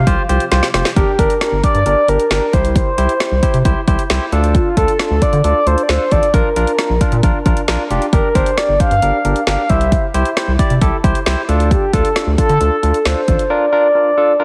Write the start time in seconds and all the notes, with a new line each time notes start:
Already playing: C3 F3 G3 F4 G4 F5
0.07 C2 F4 G4 C5, kick, closed hi-hat
0.29 C2 F4 G4 C5, closed hi-hat
0.40 closed hi-hat
0.52 C2 F4 G4 C5, snare, closed hi-hat
0.63 snare
0.74 F1 F4 G4 C5, snare, closed hi-hat
0.85 snare, closed hi-hat
0.96 G1 D4 G4 A#4, kick, closed hi-hat
1.19 G1 D4 G4 A#4, kick, closed hi-hat
1.30 closed hi-hat
1.41 D4 G4 A#4, snare, closed hi-hat
1.52 G1
1.63 D4 G4 A#4 D5, kick, closed hi-hat
1.75 G2, closed hi-hat
1.86 G1 D4 G4 A#4 D5, closed hi-hat
2.08 G1 D4 G4 A#4, closed hi-hat
2.20 closed hi-hat
2.31 G1 D4 G4 A#4, snare, closed hi-hat
2.53 C2 E4 G4 C5, kick, closed hi-hat
2.65 closed hi-hat
2.76 C5, kick, closed hi-hat
2.98 C2 E4 G4 C5, closed hi-hat
3.09 closed hi-hat
3.20 E4 G4 C5, snare, closed hi-hat
3.32 C2
3.43 E4 G4 C5, kick, closed hi-hat
3.54 C3, closed hi-hat
3.65 C2 E4 G4 C5, kick, closed hi-hat
3.88 C2 E4 G4 C5, kick, closed hi-hat
3.99 closed hi-hat
4.10 C2 E4 G4 C5, snare, closed hi-hat
4.32 D2 D4 F4 A4, closed hi-hat
4.44 closed hi-hat
4.55 F4, kick, closed hi-hat
4.77 D2 D4 F4 A4, kick, closed hi-hat
4.88 closed hi-hat
4.99 D4 F4 A4, snare, closed hi-hat
5.11 D2
5.22 D4 F4 A4 D5, kick, closed hi-hat
5.33 D3, closed hi-hat
5.44 D2 D4 F4 A4 D5, closed hi-hat
5.66 D2 D4 F4 A4 C5, closed hi-hat
5.78 closed hi-hat
5.83 D5
5.89 D2 D4 F4 A4 C5, snare, closed hi-hat
6.11 A1 D4 F4 A4 D5, kick, closed hi-hat
6.23 closed hi-hat
6.34 A#1 D4 F4 A#4, kick, closed hi-hat
6.56 A#1 D4 F4 A#4, closed hi-hat
6.67 closed hi-hat
6.79 D4 F4 A#4, snare, closed hi-hat
6.90 A#1
7.01 D4 F4 A#4, kick, closed hi-hat
7.12 A#2, closed hi-hat
7.23 A#1 D4 F4 A#4, kick, closed hi-hat
7.46 A#1 D4 F4 A#4, kick, closed hi-hat
7.57 closed hi-hat
7.68 A#1 D4 F4 A#4, snare, closed hi-hat
7.90 F1 D4 F4 G4, closed hi-hat
8.02 closed hi-hat
8.13 G1 D4 G4 A#4, kick, closed hi-hat
8.35 G1 D4 G4 A#4 C5, kick, closed hi-hat
8.46 closed hi-hat
8.58 D4 G4 A#4 D5, snare, closed hi-hat
8.69 G1
8.80 D4 G4 C5 F5, kick, closed hi-hat
8.91 G2, closed hi-hat
9.02 G1 D4 G4 A#4, closed hi-hat
9.25 G1 D4 G4 A#4, closed hi-hat
9.36 closed hi-hat
9.47 G1 D4 G4 A#4 F5, snare, closed hi-hat
9.69 C2 E4 G4 C5 E5, kick, closed hi-hat
9.81 closed hi-hat
9.92 kick, closed hi-hat
10.14 C2 E4 G4 C5, closed hi-hat
10.25 closed hi-hat
10.37 E4 G4 C5, snare, closed hi-hat
10.48 C2
10.59 E4 G4 D5, kick, closed hi-hat
10.70 C3, closed hi-hat
10.81 C2 E4 G4 A4, kick, closed hi-hat
11.04 C2 E4 G4 C5, kick, closed hi-hat
11.15 closed hi-hat
11.26 C2 E4 G4 C5, snare, closed hi-hat
11.49 D2 D4 F4 A4, closed hi-hat
11.60 closed hi-hat
11.71 G4, kick, closed hi-hat
11.93 D2 D4 F4 A4, kick, closed hi-hat
12.05 closed hi-hat
12.16 D4 F4 A4, snare, closed hi-hat
12.27 D2
12.38 D4 F4 A4, kick, closed hi-hat
12.49 D3, closed hi-hat
12.61 D2 D4 F4 A4, closed hi-hat
12.83 D2 D4 F4 A4, closed hi-hat
12.94 closed hi-hat
13.05 D2 D4 F4 A4 C5, snare, closed hi-hat
13.28 A1 D4 F4 A4, kick, closed hi-hat
13.39 closed hi-hat
13.50 D4 F4 A#4 D5
13.72 D4 F4 A#4
13.95 D4 F4 A#4
14.17 D4 F4 A4
14.40 D4 F4 A#4